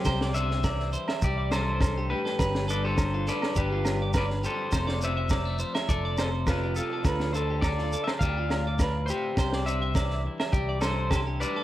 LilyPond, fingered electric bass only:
\new Staff \with { instrumentName = "Fingered electric bass" } { \clef bass \time 4/4 \key c \major \tempo 4 = 103 c,2 c,2 | g,,2 g,,2 | f,,2 f,,2 | d,2 d,2 |
c,2 c,2 | }